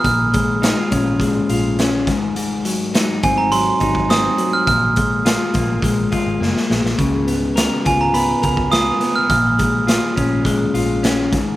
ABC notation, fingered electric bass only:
X:1
M:4/4
L:1/16
Q:1/4=104
K:A#phr
V:1 name="Fingered electric bass" clef=bass
A,,,4- A,,, z A,,,4 A,,,4 G,,,2- | G,,,4- G,,, z G,,,4 G,,,4 z2 | A,,,4- A,,, z A,,,2 A,,,2 z G,,, F,,, z A,,, A,,, | C,,4- C,, z C,,4 C,,4 z2 |
A,,,4- A,,, z A,,,4 A,,,4 G,,,2 |]